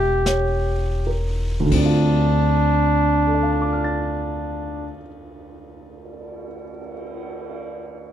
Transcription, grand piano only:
Already playing: G3 A3 A#3 C#4 E4 E5
0.27 C#5
1.07 A#4
1.60 D2
1.66 D3
1.73 C4
1.79 D4
1.85 F4
3.27 A4
3.35 D5
3.43 F5
3.52 A5
3.62 D6
3.73 F6
3.84 A6

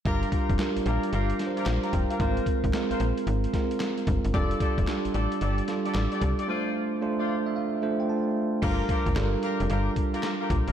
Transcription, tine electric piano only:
0.05 G3 D4 F4 A#4
0.59 G3 D4 F4 A#4
1.39 G3 D4 F4 A#4
1.46 C5
1.84 A#5
1.93 G5
2.11 F5
2.19 G#3 C4 F4 A#4
2.73 G#3 C4 F4 A#4
3.54 G#3 C4 F4 A#4
4.34 G3 D4 F4 A4
4.87 G3 D4 F4 G4
5.68 G3 D4 F4 A4
6.48 A3 D4 F4 C5
7.01 A3 D4 F4 C5
7.29 D5
7.46 E5
7.56 F5
7.82 A3 D4 F4 C5
8.00 G5
8.09 A5
8.62 G3 D4 F4 A4
8.70 A#4
9.16 G3 D4 F4 A4
9.24 A#4

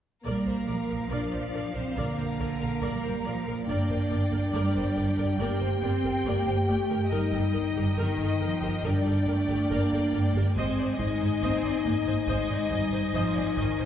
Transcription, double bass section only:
0.25 A#1
0.47 A#1
0.68 A#1
0.90 A#1
1.11 A#1
1.33 A#1
1.54 A#1
1.76 A#1
1.97 A#1
2.18 A#1
2.40 A#1
2.61 A#1
2.83 A#1
3.05 A#1
3.25 A#1
3.47 A#1
3.69 G1
3.91 G1
4.12 G1
4.33 G1
4.55 G1
4.76 G1
4.98 G1
5.19 G1
5.41 G1
5.63 G1
5.83 G1
6.05 G1
6.26 G1
6.48 G1
6.70 G1
6.91 G1
7.12 G1
7.34 G1
7.56 G1
7.77 G1
7.98 G1
8.19 G1
8.41 G1
8.62 G1
8.84 G1
9.06 G1
9.28 G1
9.49 G1
9.71 G1
9.93 G1
10.14 G1
10.35 G1
10.57 G#1
10.79 G#1
10.99 G#1
11.21 G#1
11.43 G#1
11.64 G#1
11.86 G#1
12.07 G#1
12.28 G#1
12.50 G#1
12.72 G#1
12.93 G#1
13.15 G#1
13.36 G#1
13.58 G#1
13.80 G#1

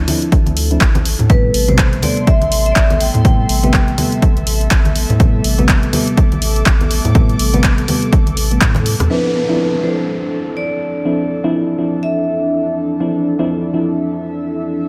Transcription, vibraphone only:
1.30 B4
1.68 C5
2.03 D5
2.27 E5
2.66 E5
2.72 D5
3.00 G5
3.25 G5
9.10 B4
9.83 C5
10.57 D5
12.03 E5

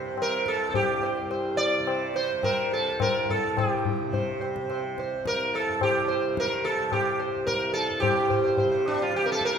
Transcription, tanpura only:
Already playing: C2 G2 C3
0.10 C3
0.67 C2
1.22 G2
1.78 C3
2.33 C3
2.90 C2
3.47 G2
4.02 C3
4.56 C3
5.13 C2
5.68 G2
6.23 C3
6.80 C3
7.35 C2
7.89 G2
8.03 G2
8.59 C3
9.14 C3

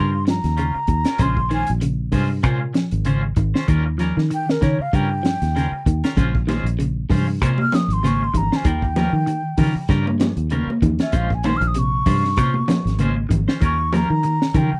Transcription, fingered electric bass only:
Already playing: G2
0.44 D#2
0.75 muted fingered electric bass stroke
0.88 D#2
1.19 A#1
1.70 A#1
2.12 G2
2.43 A#2
2.92 G#1
3.37 G#1
3.68 D#2
4.17 D#3
4.62 D#3
4.79 muted fingered electric bass stroke
4.93 G2
5.42 D#2
5.72 muted fingered electric bass stroke
5.86 D#2
6.17 A#1
6.64 A#1
7.10 G2
7.42 A#2
7.88 G#1
8.34 G#1
8.65 D#2
9.13 D#3
9.58 D#3
9.75 muted fingered electric bass stroke
9.89 G2
10.37 D#2
10.67 muted fingered electric bass stroke
10.82 D#2
11.13 A#1
11.61 A#1
12.06 G2
12.37 A#2
12.85 G#1
13.30 G#1
13.61 D#2
14.10 D#3
14.54 D#3
14.72 muted fingered electric bass stroke

